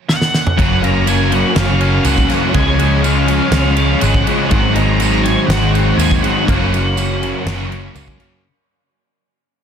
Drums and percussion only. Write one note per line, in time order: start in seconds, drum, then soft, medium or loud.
0.09 snare medium
0.21 snare medium
0.34 snare medium
0.47 mid tom medium
0.59 kick loud
0.59 crash medium
0.84 crash medium
1.07 tambourine medium
1.07 crash medium
1.32 crash medium
1.56 snare loud
1.56 crash medium
1.81 crash medium
2.05 tambourine loud
2.05 crash medium
2.18 kick medium
2.30 snare soft
2.30 crash medium
2.54 kick loud
2.54 crash medium
2.79 crash medium
3.04 tambourine medium
3.04 crash medium
3.28 crash medium
3.52 snare loud
3.52 crash medium
3.77 crash soft
4.01 tambourine medium
4.01 crash medium
4.14 kick medium
4.27 crash medium
4.51 kick medium
4.51 crash medium
4.76 crash medium
5.00 tambourine medium
5.00 crash medium
5.25 crash medium
5.50 snare loud
5.50 crash medium
5.75 crash medium
5.99 tambourine loud
5.99 crash medium
6.11 kick medium
6.24 crash medium
6.48 kick medium
6.48 crash medium
6.74 crash medium
6.97 tambourine medium
6.97 crash medium
7.23 crash medium
7.47 snare loud
7.47 crash medium
7.72 crash soft
7.95 tambourine loud
7.95 crash medium
8.08 kick medium
8.20 crash medium